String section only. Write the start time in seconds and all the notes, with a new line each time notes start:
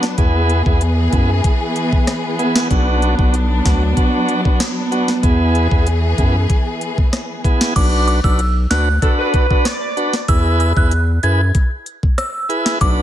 Already playing: F#3 B3 D4
0.18 E3 G#4
2.71 F#3 D4
5.24 E3 G#4